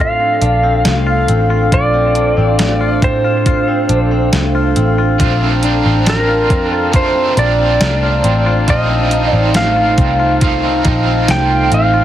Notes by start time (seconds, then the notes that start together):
Already playing: A2 A3 C4 D4 A4 C5 F5
0.00 F4 F5
0.20 C4
0.42 A#1 D4, closed hi-hat
0.63 C4
0.85 C2 A3, snare, closed hi-hat
1.07 F4
1.28 A1 C4, closed hi-hat
1.50 F4
1.72 A#1 F4 D5, kick, closed hi-hat
1.94 C4
2.15 D4, closed hi-hat
2.37 A1 C4
2.59 A3, snare, closed hi-hat
2.81 F4
3.02 A2 C4 C5, kick, closed hi-hat
3.24 F4
3.46 F4, kick, closed hi-hat
3.68 C4
3.89 A#1 D4, closed hi-hat
4.11 C4
4.33 C2 A3, snare, closed hi-hat
4.55 F4
4.76 A1 C4, closed hi-hat
4.98 F4
5.18 A#1 A#2 A3 C4 D4 F4 A5 A#5, kick, closed hi-hat
5.42 C4
5.62 C4 D4 F4, closed hi-hat
5.85 A1 C4
6.06 A#4, snare, closed hi-hat
6.29 F4
6.50 F2 C4, kick, closed hi-hat
6.70 F4 A4
6.93 A#2 A3 C4 D4 F4 C5, kick, closed hi-hat
7.15 C4
7.36 A#1 C4 D4 F4 D5, closed hi-hat
7.59 C4
7.81 C2 A3, snare, closed hi-hat
8.03 F4
8.24 A1 C4, closed hi-hat
8.46 F4
8.68 A#1 A3 C4 D#4 F4 D#5 F5, kick, closed hi-hat
8.72 F4
8.90 C4
9.11 D#4, closed hi-hat
9.30 A1 C4 D5
9.54 A3 F5, snare, closed hi-hat
9.76 F4
9.98 C2 C4, kick, closed hi-hat
10.20 F4
10.41 A#2 A3 C4 D#4 F4, kick, closed hi-hat
10.63 C4
10.84 A#1 C4 D#4 F4, kick, closed hi-hat
11.07 C4
11.28 C2 A3 G5, snare, closed hi-hat
11.50 F4
11.72 A1 C4 F5, closed hi-hat
11.94 F4